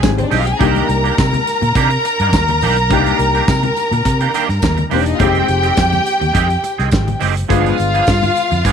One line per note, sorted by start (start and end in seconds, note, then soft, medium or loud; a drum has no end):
0.00 0.23 G#1 loud
0.00 0.03 G#3 medium
0.00 0.60 G#3 medium
0.00 0.03 C4 medium
0.00 0.61 C4 medium
0.00 0.04 D#4 medium
0.00 0.60 D#4 soft
0.00 0.62 G#4 medium
0.00 kick loud
0.00 snare loud
0.00 tambourine loud
0.00 muted conga soft
0.00 high conga medium
0.05 0.60 G4 medium
0.18 0.25 C4 medium
0.18 0.25 C5 medium
0.18 muted clean electric guitar stroke medium
0.18 closed hi-hat soft
0.18 low conga medium
0.24 0.31 D4 medium
0.24 0.31 D5 medium
0.30 0.52 B1 loud
0.30 0.44 D#3 medium
0.30 0.44 G#3 medium
0.30 0.45 C4 medium
0.30 0.39 D#4 medium
0.30 0.44 G4 loud
0.30 0.39 D#5 medium
0.30 open hi-hat medium
0.30 tambourine medium
0.30 muted conga soft
0.30 high conga medium
0.39 0.47 F4 medium
0.39 0.47 F5 loud
0.46 0.53 G4 medium
0.46 0.53 G5 medium
0.46 muted clean electric guitar stroke soft
0.46 closed hi-hat medium
0.52 0.60 G#4 medium
0.52 0.60 G#5 loud
0.59 0.81 C2 medium
0.59 0.86 D#3 loud
0.59 2.86 A#3 medium
0.59 0.87 A#3 loud
0.59 2.86 D4 medium
0.59 0.87 D4 loud
0.59 2.87 D#4 medium
0.59 0.87 G4 loud
0.59 2.87 G4 medium
0.59 4.82 A#4 loud
0.59 4.82 A#5 loud
0.59 kick loud
0.59 closed hi-hat medium
0.59 tambourine soft
0.59 muted conga soft
0.75 closed hi-hat soft
0.75 high conga medium
0.88 1.10 C2 loud
0.88 muted clean electric guitar stroke soft
0.88 closed hi-hat medium
0.88 tambourine soft
1.04 1.14 D#3 medium
1.04 1.14 A#3 medium
1.04 1.14 D4 medium
1.04 1.13 G4 medium
1.04 closed hi-hat soft
1.18 1.39 C3 loud
1.18 kick loud
1.18 snare loud
1.18 tambourine medium
1.33 muted clean electric guitar stroke soft
1.33 closed hi-hat soft
1.33 high conga medium
1.33 low conga medium
1.47 closed hi-hat medium
1.47 tambourine medium
1.61 1.72 A#2 loud
1.61 muted clean electric guitar stroke soft
1.61 closed hi-hat soft
1.61 low conga medium
1.75 1.96 C3 loud
1.75 1.89 D#3 medium
1.75 1.89 A#3 loud
1.75 1.89 D4 loud
1.75 1.89 G4 loud
1.75 kick loud
1.75 closed hi-hat medium
1.75 tambourine medium
1.75 muted conga soft
1.91 muted clean electric guitar stroke medium
1.91 closed hi-hat medium
2.04 muted clean electric guitar stroke soft
2.04 closed hi-hat medium
2.04 tambourine medium
2.20 2.33 G2 medium
2.20 2.30 D#3 medium
2.20 2.30 A#3 medium
2.20 2.30 D4 medium
2.20 2.29 A#4 medium
2.20 closed hi-hat soft
2.33 2.63 D#2 loud
2.33 kick loud
2.33 snare loud
2.33 tambourine loud
2.33 high conga medium
2.48 muted clean electric guitar stroke medium
2.48 closed hi-hat medium
2.48 low conga medium
2.61 2.91 B1 medium
2.61 2.75 D#3 medium
2.61 2.76 A#3 medium
2.61 2.76 D4 medium
2.61 2.76 G4 medium
2.61 open hi-hat medium
2.61 tambourine medium
2.61 muted conga soft
2.61 high conga medium
2.77 muted clean electric guitar stroke soft
2.77 closed hi-hat medium
2.89 3.11 C2 loud
2.89 3.18 D#3 medium
2.89 4.87 A#3 medium
2.89 3.18 A#3 medium
2.89 4.87 D4 medium
2.89 3.18 D4 loud
2.89 4.88 D#4 medium
2.89 4.88 G4 loud
2.89 kick loud
2.89 closed hi-hat medium
2.93 3.18 G4 medium
3.06 closed hi-hat soft
3.06 high conga medium
3.19 3.39 C2 loud
3.19 muted clean electric guitar stroke soft
3.19 closed hi-hat medium
3.19 tambourine soft
3.35 3.45 D#3 medium
3.35 3.44 A#3 medium
3.35 3.44 D4 medium
3.35 3.44 G4 medium
3.35 closed hi-hat soft
3.48 3.69 C3 loud
3.48 muted clean electric guitar stroke soft
3.48 kick loud
3.48 snare loud
3.48 tambourine loud
3.63 muted clean electric guitar stroke soft
3.63 closed hi-hat soft
3.63 high conga medium
3.63 low conga medium
3.76 closed hi-hat medium
3.76 tambourine medium
3.76 muted conga soft
3.91 4.01 A#2 loud
3.91 muted clean electric guitar stroke soft
3.91 closed hi-hat medium
3.91 low conga medium
4.05 4.26 C3 loud
4.05 muted clean electric guitar stroke soft
4.05 kick loud
4.05 closed hi-hat medium
4.05 tambourine soft
4.05 muted conga soft
4.21 4.31 D#3 medium
4.21 4.30 A#3 medium
4.21 4.30 D4 medium
4.21 4.30 G4 medium
4.21 closed hi-hat soft
4.34 4.47 D#3 medium
4.34 4.48 A#3 loud
4.34 4.48 D4 medium
4.34 4.48 G4 loud
4.34 closed hi-hat medium
4.34 tambourine medium
4.34 muted conga soft
4.49 4.59 G2 loud
4.49 muted clean electric guitar stroke medium
4.49 snare soft
4.49 closed hi-hat soft
4.62 4.83 D#2 loud
4.62 kick loud
4.62 snare loud
4.62 tambourine loud
4.62 muted conga soft
4.62 high conga medium
4.77 muted clean electric guitar stroke medium
4.77 closed hi-hat soft
4.77 low conga medium
4.90 5.12 E1 loud
4.90 5.04 D#3 medium
4.90 5.05 A#3 medium
4.90 5.20 A#3 medium
4.90 5.00 C4 medium
4.90 5.04 D4 loud
4.90 5.21 D4 medium
4.90 5.20 D#4 medium
4.90 5.04 G4 loud
4.90 5.21 G4 medium
4.90 5.00 C5 medium
4.90 open hi-hat medium
4.90 tambourine medium
4.90 high conga medium
5.00 5.07 D4 medium
5.00 5.07 D5 medium
5.05 5.14 D#4 medium
5.05 5.14 D#5 medium
5.05 muted clean electric guitar stroke medium
5.05 closed hi-hat medium
5.14 5.46 D#3 loud
5.14 5.21 F4 medium
5.14 5.21 F5 loud
5.19 5.40 F1 loud
5.19 5.46 G#3 medium
5.19 7.46 G#3 medium
5.19 5.47 C4 loud
5.19 7.46 C4 medium
5.19 7.47 D#4 medium
5.19 5.47 G4 loud
5.19 7.17 G4 loud
5.19 7.47 G4 loud
5.19 7.18 G5 loud
5.19 kick loud
5.19 closed hi-hat medium
5.19 muted conga soft
5.35 closed hi-hat soft
5.35 high conga medium
5.48 5.69 F1 loud
5.48 muted clean electric guitar stroke soft
5.48 closed hi-hat medium
5.48 tambourine soft
5.48 muted conga soft
5.63 5.73 D#3 medium
5.63 5.73 G#3 medium
5.63 5.73 C4 medium
5.63 5.73 G4 medium
5.63 closed hi-hat soft
5.75 5.98 F2 loud
5.75 muted clean electric guitar stroke soft
5.75 kick loud
5.75 snare loud
5.75 tambourine medium
5.91 muted clean electric guitar stroke soft
5.91 closed hi-hat soft
5.91 high conga medium
5.91 low conga medium
6.06 closed hi-hat medium
6.06 tambourine medium
6.20 6.31 D#2 loud
6.20 muted clean electric guitar stroke medium
6.20 closed hi-hat soft
6.20 low conga medium
6.33 6.55 F2 loud
6.33 6.48 D#3 medium
6.33 6.48 G#3 medium
6.33 6.48 C4 loud
6.33 6.47 G4 loud
6.33 kick loud
6.33 closed hi-hat loud
6.33 tambourine medium
6.33 muted conga soft
6.48 muted clean electric guitar stroke medium
6.48 closed hi-hat soft
6.63 muted clean electric guitar stroke soft
6.63 closed hi-hat medium
6.63 tambourine medium
6.63 muted conga soft
6.78 6.89 C2 medium
6.78 6.89 D#3 medium
6.78 6.88 G#3 medium
6.78 6.88 C4 medium
6.78 6.88 G#4 medium
6.78 snare soft
6.78 closed hi-hat soft
6.91 7.13 G#1 loud
6.91 kick loud
6.91 snare loud
6.91 tambourine loud
6.91 high conga medium
7.07 muted clean electric guitar stroke soft
7.07 closed hi-hat soft
7.07 low conga medium
7.20 7.42 F#1 medium
7.20 7.34 D#3 medium
7.20 7.34 G#3 medium
7.20 7.34 C4 medium
7.20 7.34 G4 loud
7.20 open hi-hat medium
7.20 tambourine medium
7.20 muted conga soft
7.20 high conga medium
7.35 muted clean electric guitar stroke soft
7.35 closed hi-hat medium
7.48 7.71 G1 loud
7.48 7.76 F3 loud
7.48 8.72 G#3 medium
7.48 7.76 B3 loud
7.48 8.72 B3 medium
7.48 7.76 D4 loud
7.48 8.72 D4 medium
7.48 8.72 F4 loud
7.48 8.72 F4 medium
7.48 7.76 G#4 loud
7.48 8.72 F5 loud
7.48 kick loud
7.48 closed hi-hat medium
7.48 tambourine soft
7.48 muted conga soft
7.65 closed hi-hat soft
7.65 high conga medium
7.78 8.00 G1 loud
7.78 muted clean electric guitar stroke soft
7.78 closed hi-hat medium
7.78 tambourine soft
7.78 muted conga soft
7.94 8.04 F3 medium
7.94 8.04 B3 medium
7.94 8.04 D4 medium
7.94 8.03 G#4 medium
7.94 closed hi-hat soft
8.07 8.28 G2 loud
8.07 kick loud
8.07 snare loud
8.07 tambourine medium
8.22 muted clean electric guitar stroke soft
8.22 closed hi-hat soft
8.22 high conga medium
8.22 low conga medium
8.36 closed hi-hat medium
8.36 tambourine medium
8.51 8.61 F2 loud
8.51 muted clean electric guitar stroke soft
8.51 closed hi-hat soft
8.51 low conga medium
8.64 8.72 G2 loud
8.64 8.72 F3 loud
8.64 8.72 B3 loud
8.64 8.72 D4 loud
8.64 8.72 G#4 loud
8.64 kick loud
8.64 closed hi-hat medium
8.64 tambourine medium
8.64 muted conga soft